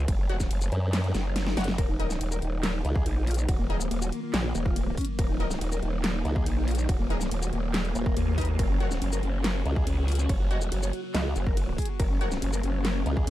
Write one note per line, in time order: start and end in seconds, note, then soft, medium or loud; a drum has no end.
0.08 0.49 F#1 medium
0.08 kick loud
0.08 closed hi-hat medium
0.08 ride medium
0.29 0.35 F#4 medium
0.29 0.35 C#5 medium
0.29 0.35 F#5 medium
0.29 closed hi-hat medium
0.40 kick medium
0.40 snare soft
0.40 shaker medium
0.51 0.70 F#1 loud
0.51 closed hi-hat medium
0.51 ride soft
0.61 shaker medium
0.72 1.13 F#2 loud
0.72 closed hi-hat medium
0.93 snare loud
0.93 clap medium
0.93 closed hi-hat medium
0.93 ride medium
0.93 swell medium
1.04 closed hi-hat soft
1.15 1.55 F#1 loud
1.15 snare medium
1.15 closed hi-hat medium
1.15 shaker medium
1.36 snare medium
1.36 closed hi-hat medium
1.36 ride soft
1.47 snare medium
1.57 1.77 F#1 loud
1.57 1.63 F#4 medium
1.57 1.63 C#5 medium
1.57 1.63 F#5 loud
1.57 snare loud
1.57 closed hi-hat medium
1.57 open hi-hat loud
1.64 snare medium
1.64 closed hi-hat medium
1.78 2.19 D#1 medium
1.78 8.55 D#3 medium
1.78 13.30 F#3 medium
1.78 13.30 A#3 medium
1.78 8.55 F4 medium
1.78 1.88 A#4 medium
1.78 kick loud
1.78 closed hi-hat medium
1.78 ride medium
1.89 1.98 D#4 medium
2.00 2.06 D#4 medium
2.00 2.06 A#4 medium
2.00 2.09 A#4 medium
2.00 2.06 D#5 loud
2.00 closed hi-hat medium
2.10 2.20 D#4 medium
2.10 snare soft
2.10 shaker medium
2.21 2.40 D#1 medium
2.21 2.30 D#4 medium
2.21 closed hi-hat medium
2.21 ride soft
2.32 2.41 A#4 medium
2.32 shaker medium
2.42 2.83 D#1 loud
2.42 2.52 D#4 medium
2.42 closed hi-hat medium
2.63 2.73 A#4 medium
2.63 snare loud
2.63 clap medium
2.63 closed hi-hat medium
2.63 ride medium
2.74 2.83 D#4 medium
2.85 3.04 C#2 loud
2.85 2.94 D#4 medium
2.85 closed hi-hat medium
2.95 3.05 G#4 loud
2.95 kick loud
3.06 3.47 A#1 loud
3.06 3.15 D#4 medium
3.06 closed hi-hat medium
3.06 ride soft
3.17 3.26 D#4 medium
3.27 3.37 F4 medium
3.27 closed hi-hat medium
3.27 open hi-hat loud
3.34 3.47 D#4 medium
3.34 closed hi-hat medium
3.34 shaker medium
3.48 3.89 D#1 loud
3.48 3.58 F#4 loud
3.48 kick loud
3.48 closed hi-hat medium
3.48 ride medium
3.59 3.69 A#3 medium
3.70 3.76 D#4 medium
3.70 3.79 G#4 loud
3.70 3.76 A#4 medium
3.70 3.76 D#5 medium
3.70 closed hi-hat medium
3.80 3.90 A#3 medium
3.80 shaker medium
3.91 4.11 D#1 medium
3.91 4.01 A#3 medium
3.91 closed hi-hat medium
3.91 ride soft
4.02 4.11 F#4 medium
4.02 shaker medium
4.12 4.22 A#3 medium
4.12 closed hi-hat medium
4.23 4.32 A#3 medium
4.34 4.53 A#1 loud
4.34 4.43 G#4 loud
4.34 snare loud
4.34 clap loud
4.34 closed hi-hat medium
4.34 ride medium
4.44 4.54 A#3 medium
4.55 4.96 D#1 loud
4.55 4.64 A#3 medium
4.55 closed hi-hat medium
4.55 shaker medium
4.66 4.75 F4 loud
4.66 kick loud
4.76 4.86 A#3 medium
4.76 closed hi-hat medium
4.76 ride soft
4.87 4.96 A#3 medium
4.97 5.07 C#4 medium
4.97 kick medium
4.97 closed hi-hat medium
4.97 open hi-hat medium
5.05 5.17 A#3 medium
5.05 closed hi-hat medium
5.19 5.60 D#1 loud
5.19 5.28 A#4 medium
5.19 kick loud
5.19 closed hi-hat medium
5.19 ride medium
5.29 5.39 D#4 medium
5.40 5.46 D#4 medium
5.40 5.46 A#4 medium
5.40 5.49 A#4 loud
5.40 5.46 D#5 medium
5.40 closed hi-hat medium
5.51 5.60 D#4 medium
5.51 snare soft
5.51 shaker medium
5.61 5.81 D#1 medium
5.61 5.71 D#4 medium
5.61 closed hi-hat medium
5.61 ride soft
5.72 5.81 A#4 loud
5.72 shaker medium
5.83 6.23 D#1 loud
5.83 5.92 D#4 medium
5.83 closed hi-hat medium
6.04 6.13 A#4 loud
6.04 snare loud
6.04 clap loud
6.04 closed hi-hat medium
6.04 ride medium
6.15 6.24 D#4 medium
6.25 6.45 C#2 medium
6.25 6.35 D#4 medium
6.25 closed hi-hat medium
6.36 6.45 G#4 loud
6.36 kick loud
6.46 6.87 A#1 medium
6.46 6.56 D#4 medium
6.46 closed hi-hat medium
6.46 ride soft
6.57 6.66 D#4 medium
6.68 6.77 F4 medium
6.68 closed hi-hat medium
6.68 open hi-hat medium
6.75 6.88 D#4 medium
6.75 closed hi-hat medium
6.75 shaker medium
6.89 7.30 D#1 loud
6.89 6.98 F#4 medium
6.89 kick loud
6.89 closed hi-hat medium
6.89 ride medium
7.00 7.09 A#3 medium
7.10 7.16 D#4 medium
7.10 7.20 G#4 loud
7.10 7.16 A#4 medium
7.10 7.16 D#5 medium
7.10 closed hi-hat medium
7.21 7.30 A#3 medium
7.21 snare soft
7.21 shaker medium
7.31 7.51 D#1 medium
7.31 7.41 A#3 medium
7.31 closed hi-hat medium
7.31 ride soft
7.42 7.51 F#4 medium
7.42 shaker medium
7.53 7.94 D#1 medium
7.53 7.62 A#3 medium
7.53 closed hi-hat medium
7.64 7.73 A#3 medium
7.74 7.84 G#4 medium
7.74 snare loud
7.74 clap medium
7.74 closed hi-hat medium
7.74 ride medium
7.85 7.94 A#3 medium
7.85 closed hi-hat soft
7.95 8.15 D#1 loud
7.95 8.05 A#3 medium
7.95 closed hi-hat medium
7.95 shaker medium
8.06 8.15 A#4 loud
8.06 kick loud
8.17 8.57 D#2 loud
8.17 8.26 A#3 medium
8.17 closed hi-hat medium
8.17 ride soft
8.27 8.37 A#3 medium
8.38 8.44 D#4 medium
8.38 8.44 A#4 medium
8.38 8.47 B4 medium
8.38 8.44 D#5 loud
8.38 kick medium
8.38 closed hi-hat medium
8.38 open hi-hat medium
8.45 8.58 A#3 medium
8.45 closed hi-hat medium
8.59 9.00 F#1 medium
8.59 13.30 C#3 medium
8.59 11.96 F#4 medium
8.59 8.69 A#4 loud
8.59 kick loud
8.59 closed hi-hat medium
8.59 ride medium
8.70 8.79 C#4 medium
8.80 8.86 F#4 medium
8.80 8.90 A#4 medium
8.80 8.86 C#5 medium
8.80 8.86 F#5 loud
8.80 closed hi-hat medium
8.91 9.00 C#4 medium
8.91 snare soft
8.91 shaker medium
9.02 9.21 F#1 loud
9.02 9.11 C#4 medium
9.02 closed hi-hat medium
9.02 ride soft
9.12 9.22 A#4 loud
9.12 shaker medium
9.23 9.64 F#1 loud
9.23 9.32 C#4 medium
9.23 closed hi-hat medium
9.44 9.54 A#4 medium
9.44 snare loud
9.44 clap medium
9.44 closed hi-hat medium
9.44 ride medium
9.55 9.64 C#4 medium
9.65 9.85 C#2 loud
9.65 9.75 C#4 medium
9.65 closed hi-hat medium
9.76 9.85 G#4 loud
9.76 kick loud
9.87 10.28 C#2 medium
9.87 9.96 C#4 medium
9.87 closed hi-hat medium
9.87 ride soft
9.97 10.07 C#4 medium
10.08 10.17 F4 medium
10.08 closed hi-hat medium
10.08 open hi-hat loud
10.15 10.28 C#4 medium
10.15 closed hi-hat medium
10.15 shaker medium
10.29 10.70 F#1 medium
10.29 10.39 C#5 loud
10.29 kick loud
10.29 closed hi-hat medium
10.29 ride medium
10.40 10.49 F#4 medium
10.51 10.57 F#4 medium
10.51 10.57 C#5 medium
10.51 10.60 D#5 loud
10.51 10.57 F#5 medium
10.51 closed hi-hat medium
10.61 10.71 F#4 medium
10.61 shaker medium
10.72 10.92 F#1 loud
10.72 10.81 F#4 medium
10.72 closed hi-hat medium
10.72 ride soft
10.83 10.92 C#5 loud
10.83 shaker medium
10.93 11.03 F#4 medium
10.93 closed hi-hat medium
11.04 11.13 F#4 medium
11.14 11.34 C#2 loud
11.14 11.24 D#5 medium
11.14 snare loud
11.14 clap medium
11.14 closed hi-hat medium
11.14 ride medium
11.25 11.34 F#4 medium
11.36 11.77 F#1 loud
11.36 11.45 F#4 medium
11.36 closed hi-hat medium
11.36 shaker medium
11.46 11.56 A#4 loud
11.46 kick loud
11.57 11.66 F#4 medium
11.57 closed hi-hat medium
11.57 ride soft
11.68 11.77 F#4 medium
11.78 11.88 G#4 medium
11.78 kick medium
11.78 closed hi-hat medium
11.78 open hi-hat loud
11.85 11.98 F#4 medium
11.85 closed hi-hat medium
12.00 12.40 F#1 medium
12.00 13.30 F4 medium
12.00 12.09 A#4 medium
12.00 kick loud
12.00 closed hi-hat medium
12.00 ride medium
12.10 12.20 C#4 medium
12.21 12.27 F#4 medium
12.21 12.30 A#4 loud
12.21 12.27 C#5 medium
12.21 12.27 F#5 medium
12.21 closed hi-hat medium
12.32 12.41 C#4 medium
12.32 snare soft
12.32 shaker medium
12.42 12.62 F#1 medium
12.42 12.52 C#4 medium
12.42 closed hi-hat medium
12.42 ride soft
12.53 12.62 A#4 medium
12.53 shaker medium
12.63 13.04 F#1 loud
12.63 12.73 C#4 medium
12.63 closed hi-hat medium
12.74 12.83 C#4 medium
12.85 12.94 A#4 medium
12.85 snare loud
12.85 clap medium
12.85 closed hi-hat medium
12.85 ride medium
12.95 13.05 C#4 medium
13.06 13.26 C#2 loud
13.06 13.15 C#4 medium
13.06 closed hi-hat medium
13.16 13.26 G#4 loud
13.16 kick loud